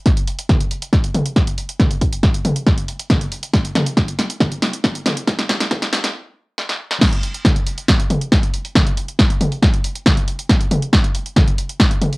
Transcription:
\new DrumStaff \with { instrumentName = "Drums" } \drummode { \time 4/4 \tempo 4 = 138 <hh bd sn>16 hh16 hho16 hh16 <hh bd sn toml>16 hh16 hho16 hh16 <hh bd sn>16 hh16 <hho toml>16 hh16 <hh bd sn>16 hh16 hho16 hh16 | <hh bd sn toml>16 hh16 <hho bd>16 hh16 <hh bd sn>16 hh16 <hho toml>16 hh16 <hh bd sn>16 hh16 hho16 hh16 <hh bd sn toml>16 hh16 hho16 hh16 | <hh bd sn>16 hh16 <hho sn toml>16 hh16 <hh bd sn>16 hh16 <hho sn>16 hh16 <hh bd sn toml>16 hh16 <hho sn>16 hh16 <hh bd sn>16 hh16 <hho sn toml>16 hh16 | <hh bd sn>16 <hh sn>16 <hho bd sn>16 <hh sn>16 <hh bd sn toml>16 <hh sn>16 <hho sn>16 <hh sn>16 r4 sn16 sn8 sn16 |
<cymc hh bd sn>16 hh16 hho16 hh16 <hh bd sn toml>16 hh16 hho16 hh16 <hh bd sn>16 hh16 <hho toml>16 hh16 <hh bd sn>16 hh16 hho16 hho16 | <hh bd sn toml>16 hh16 hho16 hh16 <hh bd sn>16 hh16 <hho toml>16 hho16 <hh bd sn>16 hh16 hho16 hh16 <hh bd sn toml>16 hh16 hho16 hh16 | <hh bd sn>16 hh16 <hho toml>16 hh16 <hh bd sn>16 hh16 hho16 hh16 <hh bd sn toml>16 hh16 hho16 hh16 <hh bd sn>16 hh16 <hho toml>16 hho16 | }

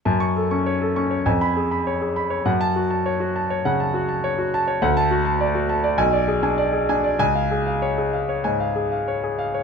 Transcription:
<<
  \new Staff \with { instrumentName = "Grand piano" } { \time 4/4 \key fis \minor \tempo 4 = 100 << { r16 cis'''8 r4. b''8 r4 r16 | r16 a''8 r2. r16 | r16 a''8 r4 r16 gis''8 r4. | gis''8 r2. r8 | } \\ { a''8 a'16 cis'''16 cis''16 a'16 cis'''16 cis''16 gis''8 gis'16 b''16 cis''16 gis'16 b''16 cis''16 | fis''8 fis'16 a''16 cis''16 fis'16 a''16 cis''16 fis''16 a''16 fis'16 a''16 cis''16 fis'16 a''16 cis''16 | fis''8 fis'16 a''16 d''16 fis'16 a''16 d''16 r16 d''16 gis'16 gis''16 d''16 gis'16 gis''16 d''16 | r16 eis''16 gis'16 eis''16 cis''16 gis'16 eis''16 cis''16 gis''16 eis''16 gis'16 eis''16 cis''16 gis'16 eis''16 cis''16 | } >> }
  \new Staff \with { instrumentName = "Grand piano" } { \clef bass \time 4/4 \key fis \minor fis,8. cis'8 r16 cis'8 eis,2 | fis,2 cis8 r4. | d,2 b,,8. d'8 r16 d'8 | cis,2 gis,8 r4. | }
>>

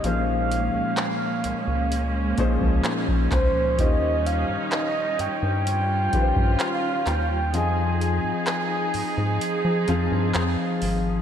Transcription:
<<
  \new Staff \with { instrumentName = "Soft synth lead" } { \time 4/4 \key bes \dorian \tempo 4 = 64 f''2. r8 c''8 | ees''8 f''8 ees''8 g''4. f''8 g''8 | aes''2. r4 | }
  \new Staff \with { instrumentName = "Grand piano" } { \time 4/4 \key bes \dorian <bes, f des' ees' aes' c''>4~ <bes, f des' ees' aes' c''>16 r4 r16 <bes, f des' ees' aes' c''>4 r8 | <ees des' f' g' c''>4~ <ees des' f' g' c''>16 r4 r16 <ees des' f' g' ces'' c''>4 r8 | <f c' f' aes' ees''>4~ <f c' f' aes' ees''>16 r4 r16 <f c' f' aes' f''>4 r8 | }
  \new Staff \with { instrumentName = "String section" } { \time 4/4 \key bes \dorian << { <bes des'>1 | ees'2 f'2 | <ees' aes'>1 | } \\ { aes1 | g1 | f1 | } >> }
  \new Staff \with { instrumentName = "Analog synth bass" } { \clef bass \time 4/4 \key bes \dorian bes,,8. r8. des,16 des,8. r16 des,16 r8 des,8 | ees,8. g,16 r8 g,16 g,8. g,16 g,16 r8 ees,8 | f,8. aes,16 r8 aes,16 aes,16 r16 f16 f,16 g,16 f,16 r16 aes,,8 | }
  \new DrumStaff \with { instrumentName = "Drums" } \drummode { \time 4/4 hh8 hh8 <hc hh>8 hh8 hh8 <hh bd>16 bd16 <hc hh>16 bd16 <hc hh bd>8 | <hh bd>8 hh8 <hc hh>8 hh8 hh8 <hh bd>16 bd16 <hc hh>8 <hc hh>8 | hh8 hh8 <hc hh>8 hho8 hh8 hh8 <hc hh>8 hho8 | }
>>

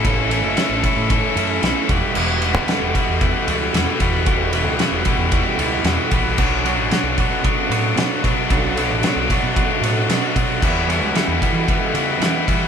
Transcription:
<<
  \new Staff \with { instrumentName = "Distorted electric guitar" } { \time 4/4 \key e \dorian \tempo 4 = 113 <cis' e' a'>8 <cis' e' a'>8 <cis' e' a'>8 <cis' e' a'>8 <cis' e' a'>8 <cis' e' a'>8 <cis' e' a'>8 <g b e'>8 | <g b e'>8 <g b e'>8 <g b e'>8 <g b e'>8 <g b e'>8 <g b e'>8 <g b e'>8 <g b e'>8 | <g b e'>8 <g b e'>8 <g b e'>8 <g b e'>8 <g b e'>8 <g b e'>8 <g b e'>8 <g b e'>8 | <fis b d'>8 <fis b d'>8 <fis b d'>8 <fis b d'>8 <fis b d'>8 <fis b d'>8 <fis b d'>8 <fis b d'>8 |
<fis b d'>8 <fis b d'>8 <fis b d'>8 <fis b d'>8 <fis b d'>8 <fis b d'>8 <fis b d'>8 <fis b d'>8 | <g b e'>8 <g b e'>8 <g b e'>8 <g b e'>8 <g b e'>8 <g b e'>8 <g b e'>8 <g b e'>8 | }
  \new Staff \with { instrumentName = "Clean electric guitar" } { \time 4/4 \key e \dorian <a, e a cis' e'>8 <a, e a cis' e'>8 <a, e a cis' e'>8 <a, e a cis' e'>8 <a, e a cis' e'>8 <a, e a cis' e'>8 <a, e a cis' e'>8 <e, b, e g b fis'>8 | <e, b, e g b fis'>8 <e, b, e g b fis'>8 <e, b, e g b fis'>8 <e, b, e g b fis'>8 <e, b, e g b fis'>8 <e, b, e g b fis'>8 <e, b, e g b fis'>8 <e, b, e g b fis'>8 | <e, b, e g b fis'>8 <e, b, e g b fis'>8 <e, b, e g b fis'>8 <e, b, e g b fis'>8 <e, b, e g b fis'>8 <e, b, e g b fis'>8 <e, b, e g b fis'>8 <e, b, e g b fis'>8 | <b, fis b d' fis' cis''>8 <b, fis b d' fis' cis''>8 <b, fis b d' fis' cis''>8 <b, fis b d' fis' cis''>8 <b, fis b d' fis' cis''>8 <b, fis b d' fis' cis''>8 <b, fis b d' fis' cis''>8 <b, fis b d' fis' cis''>8 |
<b, fis b d' fis' cis''>8 <b, fis b d' fis' cis''>8 <b, fis b d' fis' cis''>8 <b, fis b d' fis' cis''>8 <b, fis b d' fis' cis''>8 <b, fis b d' fis' cis''>8 <b, fis b d' fis' cis''>8 <b, fis b d' fis' cis''>8 | <e, e g b e' fis'>8 <e, e g b e' fis'>8 <e, e g b e' fis'>8 <e, e g b e' fis'>8 <e, e g b e' fis'>8 <e, e g b e' fis'>8 <e, e g b e' fis'>8 <e, e g b e' fis'>8 | }
  \new Staff \with { instrumentName = "Fingered electric bass" } { \clef bass \time 4/4 \key e \dorian a,,8. fis,,16 r16 a,,16 r16 a,8 r16 fis,8 b,,16 r16 e,,16 r16 | e,,8. cis,16 r16 e,,16 r16 e,8 r16 cis,8 e,16 r16 e,8 | e,,8. cis,16 r16 e,,16 r16 e,8 r16 cis,8 e,16 r16 ais,,8 | b,,8. a,,16 r16 b,,16 r16 b,8 r16 a,8 b,16 r16 b,8 |
b,,8. a,,16 r16 b,,16 r16 b,8 r16 a,8 b,16 r16 b,8 | e,8. cis,16 r16 e,16 r16 e8 r16 cis8 e16 r16 e8 | }
  \new DrumStaff \with { instrumentName = "Drums" } \drummode { \time 4/4 <bd cymr>8 cymr8 <cymr sn>8 <bd cymr>8 <bd cymr>8 cymr8 <cymr sn>8 <bd cymr>8 | cymc8 cymr8 <cymr sn>8 <bd cymr>8 <bd cymr>8 cymr8 <cymr sn>8 <bd cymr>8 | <bd cymr>8 cymr8 <cymr sn>8 <bd cymr>8 <bd cymr>8 cymr8 <cymr sn>8 <bd cymr>8 | <cymc bd>8 cymr8 <cymr sn>8 <bd cymr>8 <bd cymr>8 cymr8 <cymr sn>8 <bd cymr>8 |
<bd cymr>8 cymr8 <cymr sn>8 <bd cymr>8 <bd cymr>8 cymr8 <cymr sn>8 <bd cymr>8 | <cymc bd>8 cymr8 <cymr sn>8 <bd cymr>8 <bd cymr>8 cymr8 <cymr sn>8 <bd cymr>8 | }
>>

